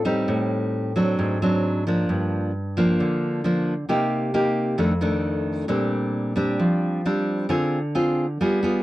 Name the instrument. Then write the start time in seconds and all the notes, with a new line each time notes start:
nylon-string guitar
Already playing: A2
0.05 G3 C4 D#4
0.28 A2
0.96 F#3 C4 D4
1.19 G#2
1.42 F#3 C4 D4
1.87 F3 A#3 D4
2.09 G2
2.77 F3 A#3 D4
3.00 D3
3.44 F3 A#3 D4
3.89 C3 A#3 D#4 G4
4.34 A#3 D#4 G4
4.78 F2 D#3 A3 D4
5.01 D#3 A3 D4
5.68 A#2 G3 C4 D4
6.36 G3 C4 D4
6.59 F3
7.05 G3 C4 D4
7.49 D3 C4 F4 G#4
7.95 C4 F4 G#4
8.41 G3 B3 F4 G#4
8.63 B3 F4 G#4